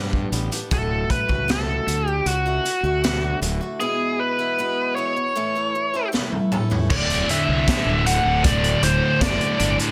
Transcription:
0.00 0.23 G2 medium
0.00 0.68 G2 medium
0.00 0.69 D3 medium
0.00 0.31 G3 medium
0.00 0.31 B3 medium
0.00 0.32 D4 medium
0.00 0.33 G4 medium
0.13 kick medium
0.32 0.48 A1 medium
0.32 0.53 G3 medium
0.32 0.52 B3 medium
0.32 0.51 D4 medium
0.32 0.50 G4 medium
0.32 closed hi-hat medium
0.51 0.70 G3 medium
0.51 0.69 B3 medium
0.51 0.69 D4 medium
0.51 0.69 G4 medium
0.51 closed hi-hat medium
0.71 1.04 D1 medium
0.71 1.47 A2 medium
0.71 1.28 A3 medium
0.71 1.27 F#4 medium
0.71 1.11 A4 medium
0.71 kick loud
0.71 closed hi-hat medium
1.10 1.50 B4 medium
1.10 kick medium
1.10 closed hi-hat soft
1.29 1.78 C#2 medium
1.29 1.48 A3 medium
1.29 1.48 F#4 medium
1.29 kick medium
1.48 1.86 A2 medium
1.48 1.88 A3 medium
1.48 1.88 F#4 medium
1.48 2.09 A4 medium
1.48 snare medium
1.48 closed hi-hat medium
1.87 2.20 D2 medium
1.87 2.07 A2 medium
1.87 2.07 D3 medium
1.87 2.06 A3 medium
1.87 2.06 F#4 medium
1.87 closed hi-hat medium
2.07 2.30 G4 medium
2.07 muted steel-string acoustic guitar stroke soft
2.26 2.58 C#2 medium
2.26 3.39 F#4 medium
2.26 closed hi-hat medium
2.46 2.64 D3 medium
2.46 2.65 A3 medium
2.46 2.65 F#4 medium
2.65 muted steel-string acoustic guitar stroke soft
2.65 closed hi-hat medium
2.83 3.32 D2 medium
2.83 3.04 D3 soft
2.83 3.04 A3 medium
2.83 3.04 F#4 medium
3.04 3.79 D2 medium
3.04 3.40 A2 medium
3.04 3.41 D3 medium
3.04 3.42 A3 medium
3.04 3.42 F#4 medium
3.04 snare medium
3.04 closed hi-hat medium
3.42 3.58 D1 medium
3.42 3.78 A2 medium
3.42 3.62 D3 medium
3.42 3.61 A3 medium
3.42 3.59 F#4 medium
3.42 closed hi-hat medium
3.61 3.79 D3 soft
3.61 3.79 A3 medium
3.61 3.78 F#4 medium
3.80 4.57 E2 medium
3.80 4.58 B2 medium
3.80 4.39 E3 medium
3.80 4.39 G#3 medium
3.80 4.38 B3 medium
3.80 4.37 E4 medium
3.80 4.21 G#4 medium
4.20 4.95 B4 medium
4.39 4.58 E3 medium
4.39 4.59 G#3 medium
4.39 4.59 B3 medium
4.39 4.59 E4 medium
4.58 5.34 E2 medium
4.58 5.34 B2 medium
4.58 4.95 E3 medium
4.58 4.96 G#3 medium
4.58 4.97 B3 medium
4.58 4.97 E4 medium
4.96 5.16 E3 medium
4.96 5.16 G#3 medium
4.96 5.16 B3 medium
4.96 5.15 E4 medium
4.96 6.09 C#5 medium
5.16 muted steel-string acoustic guitar stroke soft
5.35 5.94 A2 medium
5.35 5.94 E3 medium
5.35 5.56 A3 medium
5.35 5.55 C#4 medium
5.35 5.55 E4 medium
5.35 5.54 A4 medium
5.55 5.74 A3 soft
5.55 5.74 C#4 medium
5.55 5.74 E4 medium
5.55 5.74 A4 medium
5.75 muted steel-string acoustic guitar stroke soft
5.94 6.12 A3 medium
5.94 6.12 C#4 medium
5.94 6.12 E4 medium
5.94 6.13 A4 medium
6.12 6.88 A2 medium
6.12 6.88 E3 medium
6.12 6.51 A3 medium
6.12 6.51 C#4 medium
6.12 6.51 E4 medium
6.12 6.52 A4 medium
6.12 snare soft
6.32 high tom soft
6.52 6.71 A3 medium
6.52 6.70 C#4 medium
6.52 6.70 E4 medium
6.52 6.69 A4 medium
6.52 mid tom medium
6.70 6.89 A3 soft
6.70 6.88 C#4 medium
6.70 6.88 E4 medium
6.70 6.88 A4 medium
6.70 floor tom medium
6.90 7.23 D1 loud
6.90 7.29 D2 loud
6.90 7.29 A2 loud
6.90 7.29 D3 loud
6.90 7.27 D5 medium
6.90 kick loud
6.90 crash loud
7.10 closed hi-hat soft
7.29 7.67 D2 loud
7.29 7.68 A2 loud
7.29 7.68 D3 loud
7.29 8.06 E5 loud
7.29 closed hi-hat medium
7.48 7.65 C2 medium
7.68 8.05 D2 medium
7.68 8.06 A2 medium
7.68 8.06 D3 loud
7.68 kick loud
7.68 snare loud
7.68 closed hi-hat loud
7.86 8.19 D1 medium
8.06 8.43 D2 medium
8.06 8.44 A2 medium
8.06 8.44 D3 loud
8.06 8.46 F#5 loud
8.06 closed hi-hat medium
8.25 8.74 D1 medium
8.44 8.82 D2 loud
8.44 8.83 A2 loud
8.44 8.83 D3 loud
8.44 8.83 D5 medium
8.44 kick loud
8.44 closed hi-hat loud
8.64 closed hi-hat soft
8.83 8.99 D1 medium
8.83 9.20 D2 medium
8.83 9.21 A2 medium
8.83 9.21 D3 loud
8.83 9.21 C5 medium
8.83 closed hi-hat medium
9.21 9.37 F#1 loud
9.21 9.57 D2 medium
9.21 9.58 A2 medium
9.21 9.58 D3 medium
9.21 9.75 D5 loud
9.21 kick loud
9.21 snare loud
9.21 closed hi-hat loud
9.41 closed hi-hat soft
9.59 9.76 G1 loud
9.59 9.91 D2 medium
9.59 9.91 A2 medium
9.59 9.91 D3 medium
9.59 closed hi-hat medium
9.80 closed hi-hat medium

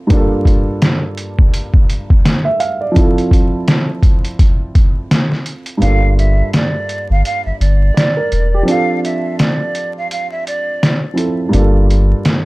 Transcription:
0.07 2.90 G2 medium
0.07 2.92 A#3 medium
0.07 kick loud
0.07 closed hi-hat medium
0.12 2.93 D4 medium
0.12 2.94 F4 medium
0.16 2.95 A4 medium
0.45 kick medium
0.45 closed hi-hat medium
0.82 snare loud
0.82 closed hi-hat medium
1.17 closed hi-hat medium
1.39 kick medium
1.54 closed hi-hat loud
1.74 kick medium
1.90 closed hi-hat medium
2.10 kick medium
2.26 snare loud
2.26 closed hi-hat loud
2.45 2.59 E5 medium
2.60 2.80 F5 medium
2.60 closed hi-hat medium
2.81 3.15 D5 medium
2.91 5.76 F3 medium
2.91 5.77 C4 medium
2.96 5.78 E4 medium
2.96 5.79 F4 medium
2.96 kick loud
2.96 closed hi-hat medium
3.01 5.80 A4 medium
3.18 closed hi-hat medium
3.31 kick medium
3.31 closed hi-hat medium
3.68 snare loud
3.68 closed hi-hat medium
4.03 kick medium
4.03 closed hi-hat medium
4.25 closed hi-hat medium
4.39 kick loud
4.39 closed hi-hat medium
4.75 kick medium
4.75 closed hi-hat medium
5.11 snare loud
5.11 closed hi-hat loud
5.32 snare soft
5.46 closed hi-hat medium
5.66 closed hi-hat soft
5.78 8.62 G2 medium
5.78 8.63 A#3 medium
5.78 6.14 F5 loud
5.82 6.42 G1 loud
5.82 8.64 D4 medium
5.82 8.65 F4 medium
5.82 closed hi-hat medium
5.87 7.95 A4 medium
6.19 6.50 E5 medium
6.19 closed hi-hat medium
6.53 7.08 D5 medium
6.53 snare loud
6.53 closed hi-hat medium
6.89 closed hi-hat medium
7.10 7.22 G1 medium
7.10 7.24 F5 medium
7.25 7.44 F5 medium
7.25 closed hi-hat medium
7.46 7.52 G1 soft
7.46 7.59 E5 medium
7.60 7.91 G1 medium
7.60 8.63 D5 medium
7.60 closed hi-hat medium
7.94 8.15 D5 medium
7.94 snare loud
7.94 closed hi-hat loud
8.17 8.51 A#4 medium
8.32 8.62 E1 medium
8.32 closed hi-hat medium
8.54 8.88 G4 medium
8.63 11.11 F3 medium
8.63 11.12 C4 medium
8.68 11.14 D4 medium
8.68 11.15 F4 medium
8.68 9.00 F5 loud
8.68 closed hi-hat medium
8.72 11.16 A4 medium
9.04 9.36 E5 medium
9.04 closed hi-hat medium
9.39 9.93 D5 medium
9.39 snare loud
9.39 closed hi-hat medium
9.75 closed hi-hat medium
9.98 10.10 F5 medium
10.11 10.30 F5 medium
10.11 closed hi-hat medium
10.31 10.45 E5 medium
10.47 11.00 D5 medium
10.47 closed hi-hat medium
10.83 snare loud
10.83 closed hi-hat loud
11.14 11.51 F3 medium
11.14 11.52 C4 medium
11.14 11.52 E4 medium
11.14 11.53 F4 medium
11.18 11.54 A4 medium
11.18 closed hi-hat medium
11.49 12.45 G2 medium
11.49 12.45 A#3 medium
11.53 12.13 G1 loud
11.53 12.45 D4 medium
11.53 12.45 F4 medium
11.53 closed hi-hat medium
11.58 12.45 A4 medium
11.90 closed hi-hat medium
12.25 snare loud
12.25 closed hi-hat medium

